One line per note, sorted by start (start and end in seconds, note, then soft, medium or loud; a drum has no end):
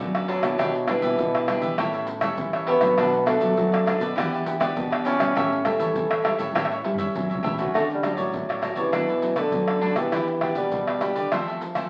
0.00 0.57 F#2 medium
0.00 0.40 F#3 medium
0.00 0.38 F#3 medium
0.00 0.40 A3 medium
0.00 0.40 D4 medium
0.00 0.13 A4 medium
0.00 0.13 B4 medium
0.00 0.12 D5 medium
0.15 0.27 A4 soft
0.15 0.28 B4 soft
0.15 0.28 D5 soft
0.15 pandeiro soft
0.15 tamborim medium
0.15 maracas soft
0.28 0.85 F#3 medium
0.28 0.43 D4 medium
0.28 0.43 A4 medium
0.28 0.42 B4 medium
0.28 0.41 D5 medium
0.28 pandeiro medium
0.42 0.56 B2 medium
0.42 0.84 D4 medium
0.42 0.85 E4 medium
0.42 0.58 A4 soft
0.42 0.58 B4 soft
0.42 0.57 D5 soft
0.42 pandeiro medium
0.42 tamborim medium
0.42 maracas medium
0.58 0.97 B2 medium
0.58 1.16 B2 soft
0.58 0.72 D4 medium
0.58 0.73 G4 medium
0.58 0.73 B4 medium
0.58 0.73 E5 medium
0.58 pandeiro medium
0.58 tamborim medium
0.58 maracas medium
0.58 surdo medium
0.75 muted cavaquinho stroke soft
0.75 pandeiro soft
0.75 maracas soft
0.88 1.75 E3 medium
0.88 1.44 G3 medium
0.88 1.02 D4 soft
0.88 1.44 D4 medium
0.88 1.45 E4 medium
0.88 1.03 G4 soft
0.88 1.02 B4 medium
0.88 1.01 E5 medium
0.88 pandeiro medium
0.88 tamborim medium
0.88 maracas medium
1.02 1.16 B2 medium
1.02 1.33 G4 medium
1.02 1.32 B4 medium
1.02 1.32 E5 medium
1.02 pandeiro medium
1.02 maracas medium
1.19 1.57 B2 medium
1.19 1.76 B2 medium
1.19 pandeiro medium
1.19 maracas medium
1.19 surdo medium
1.34 1.46 G4 soft
1.34 1.47 B4 soft
1.34 1.48 E5 soft
1.34 pandeiro soft
1.34 tamborim medium
1.34 maracas soft
1.47 1.74 G3 medium
1.47 1.62 D4 soft
1.47 1.74 D4 soft
1.47 1.74 E4 medium
1.47 1.62 G4 medium
1.47 1.62 B4 soft
1.47 1.60 E5 medium
1.47 pandeiro medium
1.47 tamborim medium
1.47 maracas medium
1.62 1.76 E3 medium
1.62 1.77 G4 medium
1.62 1.77 B4 medium
1.62 1.76 E5 medium
1.62 pandeiro medium
1.62 maracas medium
1.78 2.29 A2 medium
1.78 2.36 A2 medium
1.78 2.07 G3 medium
1.78 2.07 C#4 medium
1.78 2.08 E4 medium
1.78 1.92 G4 medium
1.78 1.92 A4 medium
1.78 1.92 C#5 medium
1.78 1.92 E5 medium
1.78 pandeiro medium
1.78 tamborim medium
1.78 maracas medium
1.78 surdo medium
1.93 2.07 A4 soft
1.93 2.06 C#5 soft
1.93 2.06 E5 soft
1.93 pandeiro soft
1.93 maracas soft
2.07 muted cavaquinho stroke soft
2.07 pandeiro medium
2.07 maracas medium
2.21 2.78 G3 medium
2.21 2.78 C#4 medium
2.21 2.78 E4 medium
2.21 2.52 A4 medium
2.21 2.51 C#5 medium
2.21 2.51 E5 medium
2.21 pandeiro medium
2.21 tamborim medium
2.21 maracas medium
2.38 2.76 E3 medium
2.38 2.95 E3 medium
2.38 pandeiro medium
2.38 maracas medium
2.38 surdo loud
2.53 2.67 A4 soft
2.53 2.67 C#5 soft
2.53 2.67 E5 soft
2.53 pandeiro soft
2.53 tamborim medium
2.53 maracas soft
2.67 3.23 B3 loud
2.67 2.81 G4 medium
2.67 2.81 A4 medium
2.67 2.81 C#5 medium
2.67 2.80 E5 medium
2.67 pandeiro medium
2.81 2.95 A2 medium
2.81 3.22 F#3 medium
2.81 3.22 A3 medium
2.81 3.23 D4 medium
2.81 2.96 A4 soft
2.81 2.96 C#5 soft
2.81 2.96 E5 soft
2.81 pandeiro medium
2.81 tamborim medium
2.81 maracas medium
2.97 3.54 B2 medium
2.97 3.36 B2 medium
2.97 3.11 D4 medium
2.97 3.12 A4 medium
2.97 3.12 B4 medium
2.97 3.12 D5 medium
2.97 pandeiro medium
2.97 tamborim medium
2.97 maracas medium
2.97 surdo medium
3.13 muted cavaquinho stroke soft
3.13 pandeiro soft
3.13 maracas soft
3.26 3.65 F#3 medium
3.26 4.12 A3 medium
3.26 3.66 A3 medium
3.26 3.40 D4 soft
3.26 3.66 D4 medium
3.26 3.40 A4 medium
3.26 3.39 B4 medium
3.26 3.39 D5 medium
3.26 pandeiro medium
3.26 tamborim medium
3.26 maracas medium
3.40 3.54 F#3 medium
3.40 3.70 A4 medium
3.40 3.70 B4 medium
3.40 3.70 D5 medium
3.40 pandeiro medium
3.40 maracas medium
3.57 4.14 F#2 medium
3.57 3.95 F#3 medium
3.57 pandeiro medium
3.57 maracas medium
3.57 surdo loud
3.72 3.85 A4 soft
3.72 3.86 B4 soft
3.72 3.86 D5 medium
3.72 pandeiro soft
3.72 tamborim medium
3.72 maracas soft
3.86 4.05 F#3 medium
3.86 4.05 A3 medium
3.86 4.00 D4 soft
3.86 4.05 D4 medium
3.86 4.00 A4 soft
3.86 4.00 B4 medium
3.86 3.99 D5 medium
3.86 pandeiro medium
3.86 tamborim medium
3.86 maracas medium
4.00 4.13 B2 medium
4.00 4.15 A4 medium
4.00 4.15 B4 medium
4.00 4.15 D5 medium
4.00 pandeiro medium
4.00 maracas medium
4.16 4.67 E3 loud
4.16 4.74 E3 medium
4.16 4.42 B3 medium
4.16 4.42 D4 medium
4.16 4.30 E4 medium
4.16 4.30 G4 medium
4.16 4.42 G4 medium
4.16 4.30 B4 medium
4.16 4.31 D5 medium
4.16 pandeiro medium
4.16 tamborim medium
4.16 maracas medium
4.16 surdo medium
4.32 4.45 G4 soft
4.32 4.45 B4 soft
4.32 4.45 D5 soft
4.32 pandeiro soft
4.32 maracas soft
4.46 4.55 B3 medium
4.46 4.55 D4 medium
4.46 4.56 G4 medium
4.46 muted cavaquinho stroke soft
4.46 pandeiro medium
4.46 maracas medium
4.60 5.16 B3 medium
4.60 5.16 D4 medium
4.60 5.16 G4 medium
4.60 4.90 G4 medium
4.60 4.90 B4 medium
4.60 4.89 D5 medium
4.60 pandeiro medium
4.60 tamborim medium
4.60 maracas medium
4.76 5.33 B2 medium
4.76 5.15 B2 medium
4.76 pandeiro medium
4.76 maracas medium
4.76 surdo medium
4.91 5.04 G4 soft
4.91 5.05 B4 soft
4.91 5.05 D5 soft
4.91 pandeiro soft
4.91 tamborim medium
4.91 maracas soft
5.05 5.61 C#4 loud
5.05 5.19 E4 medium
5.05 5.19 G4 medium
5.05 5.19 B4 medium
5.05 5.18 D5 medium
5.05 pandeiro medium
5.05 maracas medium
5.19 5.33 B2 medium
5.19 5.61 G3 medium
5.19 5.61 C#4 medium
5.19 5.61 E4 medium
5.19 5.34 G4 soft
5.19 5.34 B4 soft
5.19 5.34 D5 soft
5.19 pandeiro medium
5.19 tamborim medium
5.19 maracas medium
5.35 5.74 A2 medium
5.35 5.93 A2 medium
5.35 5.49 G4 medium
5.35 5.50 A4 medium
5.35 5.50 C#5 medium
5.35 5.50 E5 medium
5.35 pandeiro medium
5.35 tamborim medium
5.35 maracas medium
5.35 surdo medium
5.52 muted cavaquinho stroke soft
5.52 pandeiro soft
5.52 maracas soft
5.65 6.04 G3 medium
5.65 6.51 A3 medium
5.65 6.04 C#4 medium
5.65 6.04 E4 medium
5.65 5.80 G4 soft
5.65 5.79 A4 medium
5.65 5.79 C#5 medium
5.65 5.78 E5 medium
5.65 pandeiro medium
5.65 tamborim medium
5.65 maracas medium
5.65 surdo medium
5.79 5.93 E3 medium
5.79 6.09 A4 soft
5.79 6.09 C#5 medium
5.79 6.09 E5 medium
5.79 pandeiro medium
5.79 maracas medium
5.96 6.34 E3 medium
5.96 6.52 E3 medium
5.96 pandeiro medium
5.96 maracas medium
5.96 surdo loud
6.10 6.23 A4 soft
6.10 6.23 C#5 soft
6.10 6.24 E5 medium
6.10 pandeiro soft
6.10 tamborim medium
6.10 maracas soft
6.23 6.50 G3 medium
6.23 6.50 C#4 medium
6.23 6.51 E4 medium
6.23 6.38 G4 soft
6.23 6.38 A4 medium
6.23 6.38 C#5 medium
6.23 6.37 E5 medium
6.23 pandeiro medium
6.23 tamborim medium
6.38 6.52 A2 medium
6.38 6.54 A4 soft
6.38 6.53 C#5 medium
6.38 6.53 E5 medium
6.38 pandeiro medium
6.38 maracas medium
6.55 6.80 A2 loud
6.55 7.12 A2 medium
6.55 6.73 G3 medium
6.55 6.73 C#4 medium
6.55 6.73 E4 medium
6.55 6.69 G4 medium
6.55 6.69 A4 medium
6.55 6.69 C#5 medium
6.55 6.69 E5 medium
6.55 pandeiro medium
6.55 tamborim loud
6.55 maracas medium
6.55 surdo medium
6.65 tamborim medium
6.71 6.84 A4 soft
6.71 6.83 C#5 soft
6.71 6.84 E5 soft
6.71 pandeiro soft
6.71 maracas soft
6.84 7.12 G3 medium
6.84 6.95 G3 medium
6.84 6.95 C#4 medium
6.84 6.95 E4 medium
6.84 muted cavaquinho stroke soft
6.84 pandeiro medium
6.95 7.28 C#5 medium
6.95 7.27 E5 medium
6.95 surdo medium
6.95 pandeiro medium
6.95 maracas medium
7.00 7.55 C#4 medium
7.00 7.55 E4 medium
7.00 7.28 A4 medium
7.15 7.72 E3 medium
7.15 7.42 F#3 medium
7.15 pandeiro medium
7.15 maracas medium
7.15 surdo loud
7.30 7.42 A4 soft
7.30 7.43 C#5 soft
7.30 7.43 E5 soft
7.30 pandeiro soft
7.30 maracas soft
7.35 surdo medium
7.43 7.71 E3 medium
7.43 7.57 G4 medium
7.43 7.57 A4 medium
7.43 7.58 C#5 medium
7.43 7.57 E5 medium
7.43 pandeiro medium
7.43 maracas medium
7.43 surdo loud
7.55 7.99 A3 medium
7.55 7.99 C#4 medium
7.55 7.73 C#5 medium
7.55 7.72 E5 soft
7.55 pandeiro medium
7.55 maracas medium
7.55 surdo medium
7.60 7.99 F#4 medium
7.60 7.73 A4 soft
7.64 surdo medium
7.74 8.31 D3 soft
7.74 8.13 D3 medium
7.74 7.83 A3 loud
7.74 7.88 F#4 medium
7.74 7.88 A4 medium
7.74 7.88 C#5 medium
7.74 7.89 D5 medium
7.74 pandeiro medium
7.74 tamborim medium
7.74 maracas medium
7.74 surdo medium
7.89 muted cavaquinho stroke soft
7.89 pandeiro soft
7.89 maracas soft
7.94 8.13 G3 medium
8.02 8.58 F#3 medium
8.02 8.59 A3 soft
8.02 8.59 C#4 medium
8.02 8.17 F#4 soft
8.02 8.17 A4 soft
8.02 8.17 C#5 soft
8.02 8.16 D5 medium
8.02 pandeiro medium
8.02 tamborim medium
8.02 maracas medium
8.14 8.68 F#3 medium
8.14 8.47 C#5 medium
8.14 8.46 D5 medium
8.14 pandeiro medium
8.14 maracas medium
8.18 8.31 A2 medium
8.18 8.47 A4 soft
8.34 8.91 A2 medium
8.34 8.72 A2 medium
8.34 pandeiro medium
8.34 maracas medium
8.34 surdo medium
8.49 8.61 A4 soft
8.49 8.61 C#5 soft
8.49 8.62 D5 soft
8.49 pandeiro soft
8.49 tamborim medium
8.49 maracas soft
8.61 8.81 F#3 soft
8.61 8.81 A3 soft
8.61 8.81 C#4 medium
8.61 8.76 F#4 soft
8.61 8.76 A4 soft
8.61 8.75 C#5 soft
8.61 8.74 D5 medium
8.61 pandeiro medium
8.61 tamborim medium
8.61 maracas medium
8.71 8.80 F#3 medium
8.75 8.91 C3 medium
8.75 9.40 E3 medium
8.75 8.91 A4 soft
8.75 8.91 C#5 medium
8.75 8.91 D5 medium
8.75 pandeiro soft
8.75 maracas medium
8.92 9.50 B2 soft
8.92 9.45 B2 medium
8.92 9.11 F#3 soft
8.92 9.12 A3 soft
8.92 9.07 D4 medium
8.92 9.12 D4 medium
8.92 9.07 A4 medium
8.92 9.07 B4 medium
8.92 9.07 D5 medium
8.92 pandeiro medium
8.92 tamborim medium
8.92 maracas medium
8.92 surdo medium
9.08 9.21 A4 soft
9.08 9.22 B4 soft
9.08 9.22 D5 soft
9.08 pandeiro soft
9.08 maracas soft
9.22 9.32 F#3 medium
9.22 9.32 A3 medium
9.22 9.32 D4 medium
9.22 muted cavaquinho stroke soft
9.22 pandeiro medium
9.22 maracas medium
9.36 9.99 D3 medium
9.36 9.77 F#3 medium
9.36 9.77 A3 medium
9.36 9.78 D4 medium
9.36 9.66 A4 medium
9.36 9.66 B4 medium
9.36 9.66 D5 medium
9.36 pandeiro medium
9.36 tamborim medium
9.36 maracas medium
9.52 10.10 F#2 soft
9.52 9.91 F#3 medium
9.52 pandeiro medium
9.52 maracas medium
9.52 surdo medium
9.68 9.81 A4 soft
9.68 9.81 B4 soft
9.68 9.82 D5 soft
9.68 pandeiro soft
9.68 tamborim medium
9.68 maracas soft
9.81 9.93 F#3 medium
9.81 9.93 A3 medium
9.81 9.96 D4 medium
9.81 9.93 D4 medium
9.81 9.96 A4 medium
9.81 9.96 B4 medium
9.81 9.95 D5 medium
9.81 pandeiro medium
9.96 10.10 B2 medium
9.96 10.59 E3 medium
9.96 10.37 B3 medium
9.96 10.38 D4 medium
9.96 10.38 G4 medium
9.96 10.11 A4 soft
9.96 10.11 B4 soft
9.96 10.11 D5 soft
9.96 pandeiro medium
9.96 tamborim medium
9.96 maracas medium
10.12 10.69 E3 medium
10.12 10.51 E3 medium
10.12 10.26 E4 medium
10.12 10.26 G4 medium
10.12 10.26 B4 medium
10.12 10.27 D5 medium
10.12 pandeiro medium
10.12 tamborim medium
10.12 maracas medium
10.12 surdo medium
10.27 muted cavaquinho stroke soft
10.27 pandeiro soft
10.27 maracas soft
10.41 10.81 B3 medium
10.41 10.81 D4 soft
10.41 10.56 E4 soft
10.41 10.56 G4 soft
10.41 10.81 G4 medium
10.41 10.55 B4 soft
10.41 10.54 D5 medium
10.41 pandeiro medium
10.41 tamborim medium
10.41 surdo medium
10.55 10.70 B2 medium
10.55 11.47 G3 medium
10.55 10.86 G4 soft
10.55 10.85 B4 medium
10.55 10.85 D5 medium
10.55 pandeiro medium
10.55 maracas medium
10.72 11.29 B2 medium
10.72 11.11 B2 medium
10.72 pandeiro medium
10.72 maracas medium
10.72 surdo medium
10.87 11.00 G4 soft
10.87 11.01 B4 soft
10.87 11.01 D5 soft
10.87 pandeiro soft
10.87 tamborim medium
10.87 maracas soft
11.01 11.27 B3 medium
11.01 11.27 D4 medium
11.01 11.15 E4 soft
11.01 11.15 G4 soft
11.01 11.27 G4 medium
11.01 11.15 B4 medium
11.01 11.14 D5 soft
11.01 pandeiro medium
11.01 tamborim medium
11.01 maracas medium
11.15 11.29 D3 medium
11.15 11.31 G4 soft
11.15 11.30 B4 medium
11.15 11.30 D5 medium
11.15 pandeiro soft
11.15 maracas medium
11.32 11.89 F2 soft
11.32 11.60 E3 soft
11.32 11.83 F3 medium
11.32 11.60 A3 medium
11.32 11.60 C4 medium
11.32 11.46 F4 medium
11.32 11.46 A4 medium
11.32 11.46 C5 medium
11.32 11.46 E5 medium
11.32 pandeiro medium
11.32 tamborim medium
11.32 maracas medium
11.32 surdo medium
11.48 11.61 A4 soft
11.48 11.61 C5 soft
11.48 11.61 E5 soft
11.48 pandeiro soft
11.48 maracas soft
11.61 muted cavaquinho stroke soft
11.61 pandeiro medium
11.61 maracas medium
11.75 11.89 E3 medium
11.75 11.89 A3 medium
11.75 11.89 C4 medium
11.75 11.89 A4 medium
11.75 11.89 C5 medium
11.75 11.89 E5 medium
11.75 pandeiro medium
11.75 tamborim medium
11.75 maracas medium